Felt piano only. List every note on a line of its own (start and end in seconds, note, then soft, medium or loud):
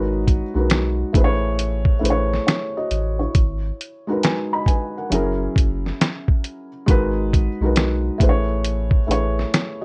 0.00 0.42 G#3 medium
0.00 0.42 D#4 medium
0.00 1.14 E4 medium
0.00 0.43 F#4 medium
0.00 0.43 A#4 medium
0.00 0.44 B4 loud
0.00 1.16 C#5 medium
0.54 1.14 G#3 medium
0.54 1.14 D#4 medium
0.54 1.15 F#4 medium
0.54 1.15 A#4 medium
0.59 1.15 B4 medium
1.13 1.93 A3 medium
1.13 1.94 E4 medium
1.13 1.94 G#4 medium
1.13 1.95 B4 medium
1.18 1.25 C5 medium
1.24 1.99 C#5 medium
1.99 3.33 A3 medium
1.99 2.46 E4 medium
1.99 2.46 G#4 medium
1.99 2.47 B4 medium
2.04 2.12 C5 medium
2.10 2.45 C#5 medium
2.47 2.75 E4 medium
2.47 2.74 C#5 medium
2.77 3.19 F#4 medium
2.77 3.18 D#5 medium
3.19 3.62 E4 soft
3.19 3.62 C#5 medium
4.07 4.60 G#3 medium
4.07 4.61 D#4 medium
4.07 4.61 F#4 medium
4.07 4.24 A#4 medium
4.12 4.23 B4 medium
4.24 4.51 B4 medium
4.24 4.51 G#5 medium
4.53 4.67 D#5 medium
4.53 4.67 B5 medium
4.67 4.95 B4 medium
4.67 4.95 G#5 medium
4.98 5.13 A#4 soft
4.98 5.39 F#5 medium
5.10 6.67 F#3 medium
5.10 6.67 C#4 medium
5.10 6.68 E4 medium
5.10 6.68 G#4 medium
5.14 6.69 A#4 medium
6.86 7.47 G#3 loud
6.86 7.48 D#4 medium
6.86 7.48 F#4 medium
6.86 7.49 A#4 medium
6.91 7.50 B4 loud
7.61 8.20 G#3 medium
7.61 8.21 D#4 medium
7.61 8.22 F#4 medium
7.61 8.22 A#4 medium
7.66 8.20 B4 medium
8.18 8.98 A3 medium
8.18 8.99 E4 medium
8.18 9.00 G#4 medium
8.18 9.00 B4 medium
8.22 8.30 C5 medium
8.29 9.04 C#5 medium
9.07 9.85 A3 medium
9.07 9.52 E4 medium
9.07 9.53 G#4 medium
9.07 9.53 B4 medium
9.11 9.54 C#5 medium
9.81 9.85 D#5 medium